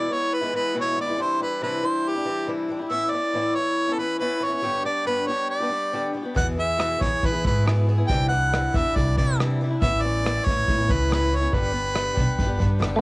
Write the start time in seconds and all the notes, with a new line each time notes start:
Already playing: D5
0.08 E3 G#3 B3 E4
0.13 C#5
0.34 B4
0.41 E3 G#3 B3 E4
0.53 E3 G#3 B3 E4 B4
0.74 E2 B2 E3 G#3 B3 E4
0.81 C#5
0.95 E3 G#3 B3 E4
1.01 D5
1.06 E3 G#3 B3 E4
1.17 C3 E3 G3 D4 E4
1.22 C5
1.39 E3 G3 D4 E4 B4
1.61 C3 E3 G3 D4 E4 B4
1.82 E3 G3 D4 E4 C5
2.09 G4
2.15 G3 D4 E4
2.25 E3 G3 D4 E4
2.47 C3 E3 G3 D4 E4
2.68 E3 G3 D4 E4
2.79 G3 D4 E4
2.90 A2 E3 B3 C#4 E4 E5
3.10 E3 B3 C#4 D5
3.15 E4
3.33 A2 E3 B3 C#4 E4
3.56 E3 B3 C#4 E4 C#5
3.88 B3 C#4 E4
3.93 A4
3.98 E3 B3 C#4 E4 B4
4.19 A2 E3 B3 C#4 E4 B4
4.41 E3 B3 C#4 E4 C#5
4.50 B3 C#4 E4
4.62 G2 D3 G3 B3 D4 G4
4.84 G3 B3 D4 G4 D5
5.05 G2 D3 G3 B3 D4 G4 B4
5.26 G3 B3 D4 G4 C#5
5.50 D5
5.60 G3 B3 D4 G4
5.69 G3 B3 D4 G4
5.92 G2 D3 G3 B3 D4 G4
6.13 G3 B3 D4 G4
6.23 G3 B3 D4 G4
6.34 E2 B2 E3 B3 E4 G#4 F#5, kick, open hi-hat
6.55 E3 B3 E4 G#4, open hi-hat
6.60 E5
6.77 E2 B2 E3 B3 E4 G#4, cross-stick, open hi-hat
6.99 E3 B3 E4 G#4 C#5, kick, open hi-hat
7.23 E3 B4, kick, open hi-hat
7.32 E3 B3 E4 G#4
7.43 G#2 E3 B3 E4 G#4 B4, kick, open hi-hat
7.65 E2 B2 E3 B3 E4 G#4, cross-stick, open hi-hat
7.87 E3 B3 E4 G#4, open hi-hat
7.98 E3 B3 E4 G#4
8.08 C2 C3 E3 G3 D4 E4 G5, kick, open hi-hat
8.29 E3 G3 D4 E4 F#5, open hi-hat
8.52 C3 E3 G3 D4 E4, cross-stick, open hi-hat
8.73 E2 E3 G3 D4 E4 E5, kick, open hi-hat
8.96 C2 D5, kick, open hi-hat
9.06 G3 D4 E4
9.17 C3 E3 G3 D4 E4 D5, kick
9.39 C3 E3 G3 D4 E4, cross-stick, open hi-hat
9.61 E3 G3 D4 E4, open hi-hat
9.71 G3 D4 E4
9.81 A1 A2 E3 B3 C#4 E4 E5, kick
10.02 E3 B3 C#4 E4 D5, open hi-hat
10.24 A2 E3 B3 C#4 E4, cross-stick, open hi-hat
10.45 A2 E3 B3 C#4 E4 C#5, kick, open hi-hat
10.68 A2, kick, open hi-hat
10.77 B3 C#4 E4
10.87 C#2 E3 B3 C#4 E4, kick
10.92 B4
11.08 A2 E3 B3 C#4 E4, cross-stick, open hi-hat
11.13 B4
11.30 E3 B3 C#4 E4, open hi-hat
11.36 C#5
11.40 B3 C#4 E4
11.51 G1 G2 D3 G3 B3 D4 G4 B4, kick, open hi-hat
11.72 G3 B3 D4 G4, open hi-hat
11.94 G2 D3 G3 B3 D4 G4, cross-stick, open hi-hat
12.14 B1 G3 B3 D4 G4, kick, open hi-hat
12.39 G1, kick, open hi-hat
12.47 G3 B3 D4 G4
12.58 G2 G3 B3 D4 G4, kick, open hi-hat
12.79 F#1 G2 D3 G3 B3 D4 G4, cross-stick, open hi-hat
12.96 A3